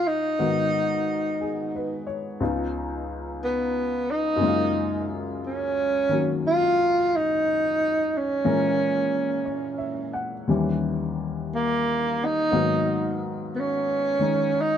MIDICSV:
0, 0, Header, 1, 3, 480
1, 0, Start_track
1, 0, Tempo, 1006711
1, 187, Time_signature, 4, 2, 24, 8
1, 4026, Tempo, 1016949
1, 7015, End_track
2, 0, Start_track
2, 0, Title_t, "Tenor saxophone"
2, 0, Program_c, 0, 66
2, 33, Note_on_c, 0, 63, 71
2, 993, Note_off_c, 0, 63, 0
2, 1641, Note_on_c, 0, 59, 66
2, 1960, Note_on_c, 0, 63, 81
2, 1967, Note_off_c, 0, 59, 0
2, 2436, Note_off_c, 0, 63, 0
2, 2603, Note_on_c, 0, 61, 66
2, 3053, Note_off_c, 0, 61, 0
2, 3085, Note_on_c, 0, 65, 77
2, 3412, Note_on_c, 0, 63, 76
2, 3419, Note_off_c, 0, 65, 0
2, 3898, Note_on_c, 0, 61, 63
2, 3905, Note_off_c, 0, 63, 0
2, 4845, Note_off_c, 0, 61, 0
2, 5491, Note_on_c, 0, 58, 60
2, 5820, Note_on_c, 0, 63, 75
2, 5827, Note_off_c, 0, 58, 0
2, 6288, Note_off_c, 0, 63, 0
2, 6437, Note_on_c, 0, 59, 45
2, 6456, Note_on_c, 0, 61, 60
2, 6463, Note_off_c, 0, 59, 0
2, 6934, Note_on_c, 0, 63, 71
2, 6941, Note_off_c, 0, 61, 0
2, 7015, Note_off_c, 0, 63, 0
2, 7015, End_track
3, 0, Start_track
3, 0, Title_t, "Upright piano"
3, 0, Program_c, 1, 0
3, 0, Control_c, 1, 64, 127
3, 0, Note_on_c, 1, 39, 42
3, 0, Note_on_c, 1, 51, 39
3, 0, Note_on_c, 1, 54, 40
3, 0, Note_on_c, 1, 61, 39
3, 0, Note_on_c, 1, 65, 50
3, 181, Note_off_c, 1, 39, 0
3, 182, Note_off_c, 1, 51, 0
3, 186, Note_on_c, 1, 44, 36
3, 188, Note_off_c, 1, 54, 0
3, 189, Note_on_c, 1, 51, 31
3, 189, Note_on_c, 1, 70, 34
3, 190, Note_off_c, 1, 61, 0
3, 190, Note_on_c, 1, 59, 33
3, 193, Note_off_c, 1, 65, 0
3, 193, Note_on_c, 1, 66, 43
3, 194, Control_c, 1, 64, 0
3, 287, Control_c, 1, 64, 127
3, 672, Note_on_c, 1, 68, 35
3, 837, Note_on_c, 1, 71, 30
3, 977, Note_off_c, 1, 68, 0
3, 985, Note_on_c, 1, 73, 38
3, 1082, Note_off_c, 1, 71, 0
3, 1141, Note_off_c, 1, 59, 0
3, 1145, Note_off_c, 1, 44, 0
3, 1145, Note_on_c, 1, 37, 41
3, 1145, Note_on_c, 1, 49, 38
3, 1146, Note_off_c, 1, 51, 0
3, 1147, Note_off_c, 1, 70, 0
3, 1148, Note_off_c, 1, 66, 0
3, 1149, Note_on_c, 1, 59, 36
3, 1150, Note_on_c, 1, 65, 44
3, 1152, Control_c, 1, 64, 0
3, 1152, Note_on_c, 1, 63, 37
3, 1234, Note_off_c, 1, 73, 0
3, 1247, Control_c, 1, 64, 127
3, 2079, Note_on_c, 1, 42, 47
3, 2087, Note_off_c, 1, 49, 0
3, 2094, Note_on_c, 1, 49, 46
3, 2105, Note_on_c, 1, 56, 43
3, 2106, Note_off_c, 1, 37, 0
3, 2108, Note_off_c, 1, 59, 0
3, 2108, Note_off_c, 1, 65, 0
3, 2110, Note_off_c, 1, 63, 0
3, 2113, Control_c, 1, 64, 0
3, 2115, Note_on_c, 1, 58, 40
3, 2132, Note_on_c, 1, 65, 52
3, 2183, Control_c, 1, 64, 127
3, 2904, Note_on_c, 1, 51, 32
3, 2906, Note_off_c, 1, 58, 0
3, 2913, Note_on_c, 1, 58, 31
3, 2916, Note_on_c, 1, 61, 30
3, 2922, Note_on_c, 1, 54, 36
3, 4011, Note_off_c, 1, 42, 0
3, 4019, Note_off_c, 1, 49, 0
3, 4022, Note_off_c, 1, 56, 0
3, 4023, Note_off_c, 1, 61, 0
3, 4025, Note_off_c, 1, 51, 0
3, 4026, Note_on_c, 1, 46, 41
3, 4029, Note_on_c, 1, 52, 37
3, 4029, Note_on_c, 1, 56, 37
3, 4030, Note_off_c, 1, 58, 0
3, 4030, Note_on_c, 1, 61, 41
3, 4031, Control_c, 1, 64, 0
3, 4031, Note_on_c, 1, 70, 48
3, 4034, Note_off_c, 1, 54, 0
3, 4038, Note_off_c, 1, 65, 0
3, 4110, Control_c, 1, 64, 127
3, 4502, Note_on_c, 1, 73, 35
3, 4657, Note_on_c, 1, 76, 30
3, 4812, Note_off_c, 1, 73, 0
3, 4824, Note_on_c, 1, 78, 35
3, 4911, Note_off_c, 1, 76, 0
3, 4984, Note_off_c, 1, 61, 0
3, 4985, Note_off_c, 1, 46, 0
3, 4985, Note_on_c, 1, 39, 36
3, 4986, Note_off_c, 1, 52, 0
3, 4987, Note_off_c, 1, 56, 0
3, 4988, Note_off_c, 1, 70, 0
3, 4990, Control_c, 1, 64, 0
3, 4990, Note_on_c, 1, 51, 33
3, 4990, Note_on_c, 1, 55, 32
3, 4991, Note_on_c, 1, 61, 30
3, 4994, Note_on_c, 1, 52, 39
3, 5075, Note_off_c, 1, 78, 0
3, 5075, Control_c, 1, 64, 127
3, 5947, Note_off_c, 1, 51, 0
3, 5948, Note_on_c, 1, 44, 42
3, 5951, Note_off_c, 1, 39, 0
3, 5953, Note_off_c, 1, 55, 0
3, 5953, Note_on_c, 1, 58, 39
3, 5954, Note_off_c, 1, 61, 0
3, 5954, Note_on_c, 1, 51, 38
3, 5954, Note_on_c, 1, 59, 35
3, 5955, Note_off_c, 1, 52, 0
3, 5955, Note_on_c, 1, 54, 47
3, 5957, Control_c, 1, 64, 0
3, 6044, Control_c, 1, 64, 127
3, 6733, Note_off_c, 1, 51, 0
3, 6740, Note_on_c, 1, 51, 30
3, 6746, Note_on_c, 1, 56, 27
3, 6754, Note_on_c, 1, 63, 34
3, 7015, Note_off_c, 1, 44, 0
3, 7015, Note_off_c, 1, 51, 0
3, 7015, Note_off_c, 1, 54, 0
3, 7015, Note_off_c, 1, 56, 0
3, 7015, Note_off_c, 1, 58, 0
3, 7015, Note_off_c, 1, 59, 0
3, 7015, Note_off_c, 1, 63, 0
3, 7015, End_track
0, 0, End_of_file